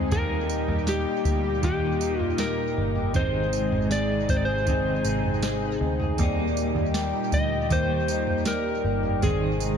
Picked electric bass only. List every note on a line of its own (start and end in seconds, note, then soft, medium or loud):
0.12 0.65 D#2 loud
0.68 1.04 D#2 loud
1.25 1.61 D2 medium
1.63 2.73 D#2 loud
2.78 3.13 G1 medium
3.15 3.69 G#1 loud
3.72 4.26 G#1 loud
4.29 5.01 G#1 loud
5.05 5.77 G#1 medium
5.81 6.17 D2 loud
6.19 6.73 D#2 loud
6.75 7.11 D#2 loud
7.32 7.68 D2 medium
7.71 8.80 D#2 loud
8.84 9.20 G1 medium
9.23 9.77 G#1 loud